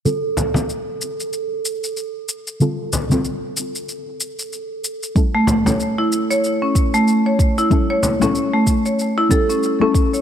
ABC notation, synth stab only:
X:1
M:4/4
L:1/16
Q:"Swing 16ths" 1/4=94
K:Dm
V:1 name="Synth stab"
[D,G,CFA]3 [D,G,CFA]12- [D,G,CFA] | [D,G,CFA]3 [D,G,CFA]12- [D,G,CFA] | [G,A,^CEA]3 [G,A,CEA]12- [G,A,CEA] | [G,A,^CEA]3 [G,A,CEA]6- [G,A,CEA] [G,A,CEG]3 [G,A,CEA]3 |]